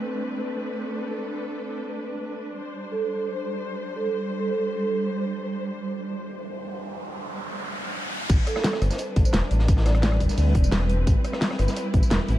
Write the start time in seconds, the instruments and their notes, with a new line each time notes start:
Already playing: string section A3 C4 D4 A4 B4
2.57 string section G3 C5
2.92 vibraphone A4
3.01 vibraphone A4
3.27 vibraphone C5
3.96 vibraphone A4
4.40 vibraphone A4
4.74 vibraphone A4
5.52 riser
8.30 analog synth bass A1, string section G3 C4 D4 B4, kick, closed hi-hat, crash, tambourine
8.47 vibraphone A4, cross-stick, closed hi-hat, tambourine
8.56 vibraphone A4, cross-stick, snare
8.64 snare, closed hi-hat, tambourine
8.73 cross-stick, snare
8.81 analog synth bass G1, cross-stick, closed hi-hat, tambourine
8.90 snare, tambourine
8.98 closed hi-hat, tambourine
9.16 analog synth bass A1, kick, closed hi-hat
9.25 vibraphone C5, tambourine
9.33 analog synth bass E1, snare, closed hi-hat, tambourine
9.51 analog synth bass A1, closed hi-hat
9.59 snare
9.68 kick, closed hi-hat, tambourine
9.77 snare
9.86 vibraphone D5, cross-stick, snare, closed hi-hat, tambourine
9.95 cross-stick, closed hi-hat
10.03 snare, closed hi-hat, tambourine
10.12 cross-stick
10.20 analog synth bass G1, kick, closed hi-hat, open hi-hat, tambourine
10.29 snare, tambourine
10.38 analog synth bass D2, closed hi-hat, open hi-hat, tambourine
10.55 analog synth bass E1, kick, closed hi-hat
10.64 tambourine
10.72 snare, closed hi-hat, tambourine
10.89 closed hi-hat
11.07 analog synth bass A1, string section E4, kick, closed hi-hat, tambourine
11.24 cross-stick, closed hi-hat, tambourine
11.33 cross-stick, snare
11.41 snare, closed hi-hat, tambourine
11.51 cross-stick, snare
11.59 analog synth bass G1, cross-stick, closed hi-hat, tambourine
11.68 snare, tambourine
11.76 closed hi-hat, tambourine
11.94 analog synth bass A1, kick, closed hi-hat
12.03 tambourine
12.10 analog synth bass E1, snare, closed hi-hat, tambourine
12.28 analog synth bass A1, closed hi-hat